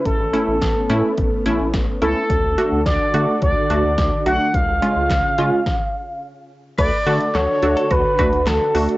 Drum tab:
CC |----------------|----------------|----------------|x---------------|
HH |x-x-x-x-x-x-x-x-|x-x-x-x-x-x-x-x-|x-x-x-x---------|x-xxx-xxx-xxx-ox|
CP |----------------|----------------|----x-----------|----x-------x---|
SD |----o-------o---|----o-------o---|----o---o-------|----o-------o---|
BD |o---o---o---o---|o---o---o---o---|o---o---o-------|o-------o-o-----|